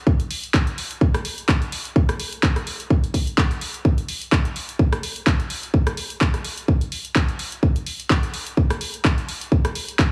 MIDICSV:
0, 0, Header, 1, 2, 480
1, 0, Start_track
1, 0, Tempo, 472441
1, 70, Time_signature, 4, 2, 24, 8
1, 10281, End_track
2, 0, Start_track
2, 0, Title_t, "Drums"
2, 68, Note_on_c, 9, 36, 126
2, 169, Note_off_c, 9, 36, 0
2, 200, Note_on_c, 9, 42, 50
2, 302, Note_off_c, 9, 42, 0
2, 311, Note_on_c, 9, 46, 109
2, 412, Note_off_c, 9, 46, 0
2, 442, Note_on_c, 9, 42, 65
2, 544, Note_off_c, 9, 42, 0
2, 548, Note_on_c, 9, 36, 124
2, 553, Note_on_c, 9, 39, 117
2, 650, Note_off_c, 9, 36, 0
2, 655, Note_off_c, 9, 39, 0
2, 681, Note_on_c, 9, 42, 52
2, 783, Note_off_c, 9, 42, 0
2, 792, Note_on_c, 9, 46, 92
2, 894, Note_off_c, 9, 46, 0
2, 922, Note_on_c, 9, 42, 65
2, 1023, Note_off_c, 9, 42, 0
2, 1028, Note_on_c, 9, 36, 119
2, 1130, Note_off_c, 9, 36, 0
2, 1163, Note_on_c, 9, 37, 82
2, 1163, Note_on_c, 9, 42, 36
2, 1264, Note_off_c, 9, 37, 0
2, 1264, Note_off_c, 9, 42, 0
2, 1269, Note_on_c, 9, 46, 117
2, 1370, Note_off_c, 9, 46, 0
2, 1402, Note_on_c, 9, 42, 64
2, 1503, Note_off_c, 9, 42, 0
2, 1509, Note_on_c, 9, 36, 118
2, 1513, Note_on_c, 9, 39, 118
2, 1611, Note_off_c, 9, 36, 0
2, 1615, Note_off_c, 9, 39, 0
2, 1643, Note_on_c, 9, 42, 36
2, 1745, Note_off_c, 9, 42, 0
2, 1751, Note_on_c, 9, 46, 97
2, 1852, Note_off_c, 9, 46, 0
2, 1883, Note_on_c, 9, 42, 62
2, 1984, Note_off_c, 9, 42, 0
2, 1990, Note_on_c, 9, 36, 126
2, 2092, Note_off_c, 9, 36, 0
2, 2123, Note_on_c, 9, 37, 85
2, 2123, Note_on_c, 9, 42, 51
2, 2225, Note_off_c, 9, 37, 0
2, 2225, Note_off_c, 9, 42, 0
2, 2231, Note_on_c, 9, 46, 107
2, 2332, Note_off_c, 9, 46, 0
2, 2362, Note_on_c, 9, 42, 65
2, 2464, Note_off_c, 9, 42, 0
2, 2471, Note_on_c, 9, 36, 122
2, 2473, Note_on_c, 9, 39, 112
2, 2572, Note_off_c, 9, 36, 0
2, 2574, Note_off_c, 9, 39, 0
2, 2602, Note_on_c, 9, 37, 65
2, 2602, Note_on_c, 9, 42, 51
2, 2704, Note_off_c, 9, 37, 0
2, 2704, Note_off_c, 9, 42, 0
2, 2711, Note_on_c, 9, 46, 92
2, 2813, Note_off_c, 9, 46, 0
2, 2844, Note_on_c, 9, 42, 63
2, 2946, Note_off_c, 9, 42, 0
2, 2951, Note_on_c, 9, 36, 122
2, 3052, Note_off_c, 9, 36, 0
2, 3085, Note_on_c, 9, 42, 36
2, 3187, Note_off_c, 9, 42, 0
2, 3190, Note_on_c, 9, 36, 65
2, 3192, Note_on_c, 9, 46, 109
2, 3292, Note_off_c, 9, 36, 0
2, 3294, Note_off_c, 9, 46, 0
2, 3325, Note_on_c, 9, 42, 63
2, 3427, Note_off_c, 9, 42, 0
2, 3431, Note_on_c, 9, 36, 117
2, 3437, Note_on_c, 9, 39, 114
2, 3532, Note_off_c, 9, 36, 0
2, 3538, Note_off_c, 9, 39, 0
2, 3565, Note_on_c, 9, 42, 35
2, 3667, Note_off_c, 9, 42, 0
2, 3672, Note_on_c, 9, 46, 91
2, 3773, Note_off_c, 9, 46, 0
2, 3803, Note_on_c, 9, 42, 60
2, 3904, Note_off_c, 9, 42, 0
2, 3911, Note_on_c, 9, 36, 121
2, 4013, Note_off_c, 9, 36, 0
2, 4043, Note_on_c, 9, 42, 49
2, 4145, Note_off_c, 9, 42, 0
2, 4151, Note_on_c, 9, 46, 102
2, 4252, Note_off_c, 9, 46, 0
2, 4283, Note_on_c, 9, 42, 64
2, 4384, Note_off_c, 9, 42, 0
2, 4390, Note_on_c, 9, 36, 113
2, 4394, Note_on_c, 9, 39, 115
2, 4492, Note_off_c, 9, 36, 0
2, 4496, Note_off_c, 9, 39, 0
2, 4523, Note_on_c, 9, 42, 51
2, 4625, Note_off_c, 9, 42, 0
2, 4632, Note_on_c, 9, 46, 88
2, 4734, Note_off_c, 9, 46, 0
2, 4764, Note_on_c, 9, 42, 64
2, 4866, Note_off_c, 9, 42, 0
2, 4870, Note_on_c, 9, 36, 115
2, 4971, Note_off_c, 9, 36, 0
2, 5004, Note_on_c, 9, 37, 84
2, 5004, Note_on_c, 9, 42, 35
2, 5106, Note_off_c, 9, 37, 0
2, 5106, Note_off_c, 9, 42, 0
2, 5114, Note_on_c, 9, 46, 108
2, 5215, Note_off_c, 9, 46, 0
2, 5243, Note_on_c, 9, 42, 65
2, 5345, Note_off_c, 9, 42, 0
2, 5350, Note_on_c, 9, 36, 122
2, 5355, Note_on_c, 9, 39, 112
2, 5451, Note_off_c, 9, 36, 0
2, 5457, Note_off_c, 9, 39, 0
2, 5483, Note_on_c, 9, 42, 37
2, 5585, Note_off_c, 9, 42, 0
2, 5589, Note_on_c, 9, 46, 91
2, 5691, Note_off_c, 9, 46, 0
2, 5722, Note_on_c, 9, 42, 61
2, 5824, Note_off_c, 9, 42, 0
2, 5830, Note_on_c, 9, 36, 118
2, 5931, Note_off_c, 9, 36, 0
2, 5961, Note_on_c, 9, 37, 84
2, 5961, Note_on_c, 9, 42, 53
2, 6063, Note_off_c, 9, 37, 0
2, 6063, Note_off_c, 9, 42, 0
2, 6068, Note_on_c, 9, 46, 98
2, 6170, Note_off_c, 9, 46, 0
2, 6200, Note_on_c, 9, 42, 66
2, 6302, Note_off_c, 9, 42, 0
2, 6310, Note_on_c, 9, 36, 111
2, 6312, Note_on_c, 9, 39, 110
2, 6412, Note_off_c, 9, 36, 0
2, 6414, Note_off_c, 9, 39, 0
2, 6441, Note_on_c, 9, 37, 61
2, 6441, Note_on_c, 9, 42, 53
2, 6542, Note_off_c, 9, 37, 0
2, 6542, Note_off_c, 9, 42, 0
2, 6548, Note_on_c, 9, 46, 88
2, 6650, Note_off_c, 9, 46, 0
2, 6681, Note_on_c, 9, 42, 68
2, 6782, Note_off_c, 9, 42, 0
2, 6790, Note_on_c, 9, 36, 110
2, 6892, Note_off_c, 9, 36, 0
2, 6922, Note_on_c, 9, 42, 37
2, 7023, Note_off_c, 9, 42, 0
2, 7030, Note_on_c, 9, 46, 102
2, 7132, Note_off_c, 9, 46, 0
2, 7161, Note_on_c, 9, 42, 65
2, 7262, Note_off_c, 9, 42, 0
2, 7270, Note_on_c, 9, 36, 111
2, 7272, Note_on_c, 9, 39, 114
2, 7372, Note_off_c, 9, 36, 0
2, 7374, Note_off_c, 9, 39, 0
2, 7401, Note_on_c, 9, 42, 37
2, 7503, Note_off_c, 9, 42, 0
2, 7510, Note_on_c, 9, 46, 87
2, 7612, Note_off_c, 9, 46, 0
2, 7643, Note_on_c, 9, 42, 64
2, 7744, Note_off_c, 9, 42, 0
2, 7750, Note_on_c, 9, 36, 114
2, 7852, Note_off_c, 9, 36, 0
2, 7884, Note_on_c, 9, 42, 54
2, 7985, Note_off_c, 9, 42, 0
2, 7991, Note_on_c, 9, 46, 99
2, 8092, Note_off_c, 9, 46, 0
2, 8125, Note_on_c, 9, 42, 68
2, 8226, Note_off_c, 9, 42, 0
2, 8230, Note_on_c, 9, 36, 108
2, 8235, Note_on_c, 9, 39, 114
2, 8332, Note_off_c, 9, 36, 0
2, 8337, Note_off_c, 9, 39, 0
2, 8364, Note_on_c, 9, 42, 54
2, 8465, Note_off_c, 9, 42, 0
2, 8470, Note_on_c, 9, 46, 85
2, 8571, Note_off_c, 9, 46, 0
2, 8601, Note_on_c, 9, 42, 69
2, 8703, Note_off_c, 9, 42, 0
2, 8710, Note_on_c, 9, 36, 109
2, 8812, Note_off_c, 9, 36, 0
2, 8843, Note_on_c, 9, 37, 78
2, 8843, Note_on_c, 9, 42, 39
2, 8945, Note_off_c, 9, 37, 0
2, 8945, Note_off_c, 9, 42, 0
2, 8951, Note_on_c, 9, 46, 101
2, 9052, Note_off_c, 9, 46, 0
2, 9082, Note_on_c, 9, 42, 65
2, 9183, Note_off_c, 9, 42, 0
2, 9190, Note_on_c, 9, 36, 110
2, 9195, Note_on_c, 9, 39, 116
2, 9292, Note_off_c, 9, 36, 0
2, 9297, Note_off_c, 9, 39, 0
2, 9326, Note_on_c, 9, 42, 38
2, 9428, Note_off_c, 9, 42, 0
2, 9434, Note_on_c, 9, 46, 86
2, 9536, Note_off_c, 9, 46, 0
2, 9565, Note_on_c, 9, 42, 70
2, 9666, Note_off_c, 9, 42, 0
2, 9670, Note_on_c, 9, 36, 116
2, 9772, Note_off_c, 9, 36, 0
2, 9802, Note_on_c, 9, 37, 78
2, 9802, Note_on_c, 9, 42, 57
2, 9904, Note_off_c, 9, 37, 0
2, 9904, Note_off_c, 9, 42, 0
2, 9910, Note_on_c, 9, 46, 102
2, 10012, Note_off_c, 9, 46, 0
2, 10043, Note_on_c, 9, 42, 71
2, 10145, Note_off_c, 9, 42, 0
2, 10149, Note_on_c, 9, 36, 115
2, 10154, Note_on_c, 9, 39, 119
2, 10251, Note_off_c, 9, 36, 0
2, 10255, Note_off_c, 9, 39, 0
2, 10281, End_track
0, 0, End_of_file